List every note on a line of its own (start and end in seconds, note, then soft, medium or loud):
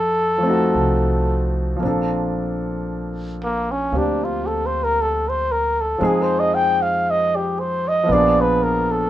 0.00 0.71 F2 medium
0.00 1.51 A4 medium
0.38 1.75 F3 soft
0.38 1.81 A3 soft
0.43 1.81 C4 soft
0.43 1.84 D#4 soft
0.49 1.85 F#4 soft
0.75 1.77 C2 soft
1.76 5.97 F3 soft
1.76 3.91 A#3 soft
1.83 3.88 A#1 medium
1.83 3.92 C4 soft
1.83 6.02 D4 soft
1.87 6.03 A4 soft
3.44 3.73 A#3 medium
3.71 3.99 C#4 soft
3.92 5.96 D2 medium
3.92 6.01 A#3 soft
3.92 5.99 C4 soft
3.92 6.02 G4 soft
3.98 4.26 D4 soft
4.24 4.48 F4 soft
4.47 4.68 A4 soft
4.66 4.85 C5 medium
4.84 5.03 A#4 medium
5.01 5.30 A4 medium
5.29 5.53 C5 medium
5.52 5.82 A#4 medium
5.81 6.08 A4 medium
5.98 8.04 F2 medium
5.98 8.02 F3 soft
5.98 8.08 G#3 soft
5.98 8.08 C4 soft
5.98 8.09 D#4 soft
6.03 8.09 G#4 soft
6.03 6.24 G#4 soft
6.22 6.41 C5 medium
6.39 6.56 D#5 medium
6.55 6.83 G5 medium
6.82 7.12 F5 medium
7.10 7.37 D#5 medium
7.36 7.61 G4 soft
7.60 7.89 C5 medium
7.88 8.14 D#5 medium
8.03 9.10 F3 soft
8.03 9.10 A#3 soft
8.09 9.10 A#1 medium
8.09 9.10 B3 soft
8.09 9.10 D4 soft
8.09 8.42 D5 medium
8.14 9.10 G#4 soft
8.41 8.64 B4 medium
8.63 8.93 A#4 medium
8.91 9.10 A4 medium